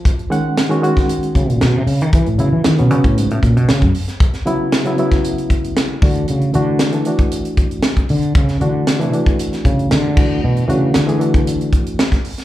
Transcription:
Already playing: fretless electric bass F3
0.05 kick, closed hi-hat
0.19 closed hi-hat
0.30 reed electric piano D#3 G#3 C#4 F#5, closed hi-hat
0.57 snare, closed hi-hat
0.69 reed electric piano D#3 G#3 C#4 F#4, closed hi-hat
0.81 reed electric piano D#3 G#3 C#4 F#4, closed hi-hat
0.97 kick, snare, closed hi-hat
1.09 closed hi-hat
1.23 closed hi-hat
1.35 fretless electric bass C#3, kick, closed hi-hat
1.50 fretless electric bass A#2, closed hi-hat
1.61 fretless electric bass B2, snare, closed hi-hat
1.76 fretless electric bass C3
1.87 fretless electric bass C#3, open hi-hat
2.01 fretless electric bass D#3, closed hi-hat
2.13 fretless electric bass E3, kick, closed hi-hat
2.26 fretless electric bass A2, closed hi-hat
2.38 reed electric piano C#3 F#3 B3 E4, fretless electric bass C#3, closed hi-hat
2.52 fretless electric bass E3
2.64 fretless electric bass D#3, snare, closed hi-hat
2.78 fretless electric bass B2, reed electric piano C#3 F#3 B3 C#4, closed hi-hat
2.90 reed electric piano C#3 F#3 B3 C#4, fretless electric bass C#3, closed hi-hat
3.04 fretless electric bass A2, kick, closed hi-hat
3.18 fretless electric bass G#2, closed hi-hat
3.30 fretless electric bass A2, closed hi-hat
3.43 fretless electric bass A#2, kick, closed hi-hat
3.57 fretless electric bass B2, closed hi-hat
3.69 fretless electric bass C#3, snare, closed hi-hat
3.82 fretless electric bass F#2, kick, closed hi-hat
3.94 open hi-hat
4.08 snare, closed hi-hat
4.20 kick, closed hi-hat
4.34 snare, closed hi-hat
4.45 reed electric piano C#3 F#3 B3 E4, closed hi-hat
4.72 snare, closed hi-hat
4.85 reed electric piano C#3 F#3 B3 E4, closed hi-hat
4.97 reed electric piano C#3 F#3 B3 E4, closed hi-hat
5.12 kick, snare, closed hi-hat
5.24 closed hi-hat
5.38 closed hi-hat
5.50 kick, closed hi-hat
5.64 closed hi-hat
5.77 snare, closed hi-hat
6.01 fretless electric bass D3, reed electric piano E3 A3 D4 F#4, kick, open hi-hat
6.15 closed hi-hat
6.28 fretless electric bass C#3, closed hi-hat
6.41 closed hi-hat
6.53 fretless electric bass D3, reed electric piano E3 A3 D4 F#4, closed hi-hat
6.79 snare, closed hi-hat
6.92 reed electric piano E3 A3 D4 A4, closed hi-hat
7.05 reed electric piano E3 A3 D4 F#4, closed hi-hat
7.18 kick, closed hi-hat
7.31 closed hi-hat
7.45 closed hi-hat
7.57 kick, closed hi-hat
7.71 closed hi-hat
7.83 snare, closed hi-hat
7.97 kick, closed hi-hat
8.09 fretless electric bass D3, open hi-hat
8.23 closed hi-hat
8.35 fretless electric bass C#3, kick, closed hi-hat
8.49 snare, closed hi-hat
8.60 fretless electric bass D3, reed electric piano E3 A3 D4 F#4, closed hi-hat
8.87 snare, closed hi-hat
9.00 reed electric piano E3 A3 D4 E4, closed hi-hat
9.13 reed electric piano E3 A3 D4 F#4, closed hi-hat
9.26 kick, closed hi-hat
9.39 closed hi-hat
9.53 snare, closed hi-hat
9.65 fretless electric bass C#3, kick, closed hi-hat
9.79 closed hi-hat
9.91 fretless electric bass D3, snare, closed hi-hat
10.16 reed electric piano E3 A3 D4 F#4, kick, crash
10.44 fretless electric bass B2
10.56 closed hi-hat
10.68 fretless electric bass C#3, reed electric piano E3 A3 D4 F#4, closed hi-hat
10.94 fretless electric bass D3, snare, closed hi-hat
11.07 reed electric piano E3 A3 D4 G#4, closed hi-hat
11.20 reed electric piano E3 A3 D4 F#4, closed hi-hat
11.34 kick, closed hi-hat
11.47 closed hi-hat
11.61 closed hi-hat
11.73 kick, closed hi-hat
11.86 closed hi-hat
11.99 snare, closed hi-hat
12.12 kick, snare, closed hi-hat
12.24 open hi-hat
12.38 snare, closed hi-hat

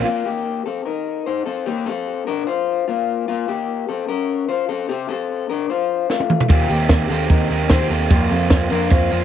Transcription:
0.05 clean electric guitar A#3 F4
0.25 clean electric guitar A#3 G4
0.66 clean electric guitar C4 A4
0.85 clean electric guitar D#4 A#4
1.26 clean electric guitar D#4 C5
1.46 clean electric guitar C4 A4
1.66 clean electric guitar A#3 G4
1.86 clean electric guitar C4 A4
2.27 clean electric guitar D4 A#4
2.47 clean electric guitar F4 C5
2.88 clean electric guitar A#3 F4
3.28 clean electric guitar A#3 F4
3.48 clean electric guitar A#3 G4
3.89 clean electric guitar C4 A4
4.08 clean electric guitar C#4 A#4
4.49 clean electric guitar F4 C5
4.69 clean electric guitar C4 A4
4.89 clean electric guitar C4 G4
5.09 clean electric guitar C4 A4
5.50 clean electric guitar D4 A#4
5.70 clean electric guitar F4 C5
6.10 clean electric guitar A3 F4, snare
6.20 high tom
6.30 mid tom
6.40 floor tom
6.49 picked electric bass D#2, overdriven electric guitar D#3 A#3 C4 G4, clean electric guitar A#3 F4, kick, ride
6.69 picked electric bass D#2, clean electric guitar A#3 G4, open hi-hat
6.89 picked electric bass D#2, kick, snare, hi-hat pedal, ride
7.09 picked electric bass D#2, overdriven electric guitar D#3 A#3 C4 G4, clean electric guitar C4 A4, open hi-hat
7.30 picked electric bass D#2, clean electric guitar D#4 A#4, kick, hi-hat pedal, ride
7.49 picked electric bass D#2, overdriven electric guitar D#3 A#3 C4 G4, open hi-hat
7.69 picked electric bass D#2, overdriven electric guitar D#3 A#3 C4 G4, clean electric guitar D#4 C5, kick, snare, hi-hat pedal, ride
7.80 overdriven electric guitar A#3 C4 G4
7.90 picked electric bass D#2, overdriven electric guitar D#3 A#3 C4 G4, clean electric guitar C4 A4, open hi-hat
8.09 overdriven electric guitar F2 C3 F3 A#3 C4 F4, picked electric bass F2, clean electric guitar A#3 G4, kick, hi-hat pedal, ride
8.30 picked electric bass F2, clean electric guitar C4 A4, open hi-hat
8.50 kick, snare, hi-hat pedal, ride
8.69 picked electric bass F2, overdriven electric guitar F3 A#3 C4 F4, clean electric guitar D4 A#4, open hi-hat
8.90 picked electric bass F2, clean electric guitar F4 C5, kick, hi-hat pedal, ride
9.11 picked electric bass F2, overdriven electric guitar F3 A#3 C4 F4, open hi-hat

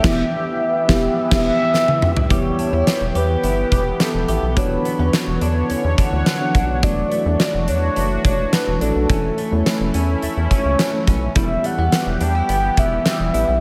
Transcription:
Already playing: clean electric guitar E3 G4, analog synth pad G4, soft synth lead E5
0.03 analog synth bass E1, analog synth pad E3 B3, fm electric piano E3 B3 E4 G4 E5, kick, snare, crash
0.88 analog synth bass E1, fm electric piano B3 E4 G4 E5, kick, snare
1.31 analog synth bass E1, fm electric piano B3 E4 G4 E5, kick, snare, crash
1.47 soft synth lead E5
1.74 snare
1.88 high tom
2.02 mid tom
2.17 floor tom
2.30 analog synth bass E1, analog synth pad E3 B3 G4, fm electric piano E3 B3 E4 G4 E5, clean electric guitar G3 G4, soft synth lead C#5, kick, closed hi-hat
2.59 clean electric guitar D4, closed hi-hat
2.72 analog synth bass E2, fm electric piano B3 E4 G4 E5, clean electric guitar E4
2.87 clean electric guitar B3, snare, closed hi-hat
3.01 analog synth bass E1
3.15 analog synth bass E2, clean electric guitar G4, soft synth lead B4, closed hi-hat
3.43 analog synth bass G1, clean electric guitar E4, closed hi-hat
3.72 analog synth bass E1, clean electric guitar G4, kick, closed hi-hat
4.00 clean electric guitar B3, soft synth lead A4, snare, closed hi-hat
4.14 analog synth bass E1
4.28 analog synth bass A1, fm electric piano B3 E4 G4 E5, clean electric guitar G4, closed hi-hat
4.42 analog synth bass B1
4.56 analog synth bass E1, analog synth pad D3 C#5, fm electric piano E3 B3 D4 F#4 C#5, clean electric guitar F#3 D4, soft synth lead B4, kick, closed hi-hat
4.85 clean electric guitar B3, closed hi-hat
4.99 analog synth bass E2, fm electric piano D3 B3 F#4 C#5, clean electric guitar C#4
5.13 clean electric guitar F#3, snare, closed hi-hat
5.27 analog synth bass E1
5.41 analog synth bass E2, clean electric guitar D4, closed hi-hat
5.70 analog synth bass E2, clean electric guitar C#4, closed hi-hat
5.84 analog synth bass E2
5.98 clean electric guitar D4, soft synth lead F#5, kick, closed hi-hat
6.12 analog synth bass D2
6.26 clean electric guitar F#3, snare, closed hi-hat
6.40 fm electric piano B3 D4 F#4 C#5
6.55 analog synth bass B1, clean electric guitar D4, kick, closed hi-hat
6.82 analog synth bass E1, fm electric piano E3 A3 D4 F#4 D5, clean electric guitar F#3 D4, analog synth pad D4 F#4, soft synth lead D5, kick, closed hi-hat
7.11 clean electric guitar A3, closed hi-hat
7.25 analog synth bass E2, fm electric piano A3 D4 F#4 D5
7.40 clean electric guitar F#3, snare, closed hi-hat
7.54 analog synth bass E1
7.68 analog synth bass E2, clean electric guitar D4, soft synth lead C#5, closed hi-hat
7.96 analog synth bass F#1, clean electric guitar A3, closed hi-hat
8.25 analog synth bass E1, clean electric guitar D4, soft synth lead C#5, kick, closed hi-hat
8.53 clean electric guitar F#3, soft synth lead B4, snare, closed hi-hat
8.67 analog synth bass E1
8.81 analog synth bass A1, fm electric piano A3 D4 F#4 D5, clean electric guitar D4, soft synth lead A4, closed hi-hat
8.95 analog synth bass B1
9.09 analog synth bass E1, fm electric piano E3 A3 C#4 E4 C#5, clean electric guitar E3 C#4, analog synth pad A3 C#4 E4, kick, closed hi-hat
9.38 clean electric guitar A3, closed hi-hat
9.51 analog synth bass E2, fm electric piano A3 C#4 E4 C#5
9.66 clean electric guitar E3, snare, closed hi-hat
9.80 analog synth bass E1
9.94 analog synth bass E2, clean electric guitar C#4, closed hi-hat
10.22 analog synth bass E2, clean electric guitar A3, closed hi-hat
10.37 analog synth bass E2
10.51 clean electric guitar C#4, soft synth lead C#5, kick, closed hi-hat
10.65 analog synth bass C#2
10.79 clean electric guitar E3, snare, closed hi-hat
10.93 fm electric piano A3 C#4 E4 C#5
11.07 analog synth bass B1, clean electric guitar C#4, kick, closed hi-hat
11.35 analog synth bass E1, fm electric piano E3 B3 E4 G4 E5, analog synth pad E3 B3 G4, clean electric guitar G3 E4, soft synth lead E5, kick, closed hi-hat
11.64 clean electric guitar A3, soft synth lead F#5, closed hi-hat
11.78 analog synth bass E2, fm electric piano B3 E4 G4 E5, clean electric guitar B3
11.92 clean electric guitar G3, snare, closed hi-hat
12.06 analog synth bass E1
12.21 analog synth bass E2, clean electric guitar D4, soft synth lead G5, closed hi-hat
12.35 clean electric guitar E4
12.49 analog synth bass G1, clean electric guitar B3, soft synth lead G5, closed hi-hat
12.77 analog synth bass E1, clean electric guitar E4, soft synth lead E5, kick, closed hi-hat
13.06 clean electric guitar G3, snare, closed hi-hat
13.20 analog synth bass E1
13.34 analog synth bass A1, fm electric piano B3 E4 G4 E5, clean electric guitar E4, closed hi-hat
13.48 analog synth bass B1

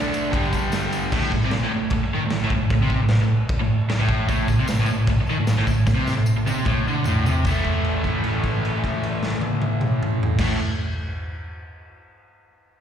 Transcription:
Already playing: overdriven electric guitar D3 A3 D4
0.14 ride, tambourine
0.25 tambourine
0.31 overdriven electric guitar G2 D3, kick, ride, tambourine
0.36 overdriven electric guitar G3
0.43 tambourine
0.53 kick, ride, tambourine
0.64 tambourine
0.72 snare, ride, tambourine
0.83 tambourine
0.92 ride, tambourine
1.03 tambourine
1.12 overdriven electric guitar A2, kick, crash
1.32 overdriven electric guitar A2, kick
1.45 overdriven electric guitar C3
1.51 snare, crash
1.56 overdriven electric guitar A2
1.63 overdriven electric guitar A2
1.74 overdriven electric guitar A2
1.90 overdriven electric guitar A2, kick, crash
2.04 muted overdriven electric guitar stroke
2.14 overdriven electric guitar D#3
2.26 overdriven electric guitar A2
2.30 snare, crash
2.44 overdriven electric guitar A2
2.50 kick
2.55 overdriven electric guitar A2
2.70 overdriven electric guitar A2, kick, crash
2.82 overdriven electric guitar C3
2.90 kick
3.03 overdriven electric guitar A2
3.08 snare, crash
3.22 overdriven electric guitar A2
3.49 kick, crash
3.61 overdriven electric guitar A2
3.89 muted overdriven electric guitar stroke, snare, crash
4.01 overdriven electric guitar A2
4.09 kick
4.29 overdriven electric guitar A2, kick, tambourine, crash
4.48 overdriven electric guitar A2, kick, tambourine
4.60 overdriven electric guitar C3
4.67 overdriven electric guitar A2, snare, tambourine, crash
4.80 overdriven electric guitar A2
4.86 tambourine
4.92 overdriven electric guitar A2
5.07 overdriven electric guitar A2, kick, tambourine, crash
5.21 muted overdriven electric guitar stroke
5.27 overdriven electric guitar D#3, tambourine
5.40 overdriven electric guitar A2
5.47 snare, tambourine, crash
5.58 overdriven electric guitar A2
5.67 overdriven electric guitar A2, kick, tambourine
5.87 overdriven electric guitar A2, kick, snare, tambourine
5.95 overdriven electric guitar C3
6.07 snare, tambourine
6.17 overdriven electric guitar A2
6.26 tambourine
6.37 overdriven electric guitar A2
6.46 overdriven electric guitar C3, high tom, tambourine
6.65 overdriven electric guitar A2, kick, mid tom, tambourine
6.87 overdriven electric guitar D3, tambourine
7.04 overdriven electric guitar A2, floor tom, tambourine
7.26 overdriven electric guitar C3, floor tom, tambourine
7.44 overdriven electric guitar A2 E3, kick, crash, tambourine
7.51 overdriven electric guitar A3
7.65 kick, crash
7.84 crash
8.04 kick, crash
8.24 crash
8.44 kick, crash
8.65 crash
8.84 kick, crash
9.03 crash
9.23 snare
9.41 high tom
9.62 high tom
9.81 mid tom
10.03 mid tom
10.23 floor tom
10.39 overdriven electric guitar A2 E3, kick, snare, crash
10.44 overdriven electric guitar A3

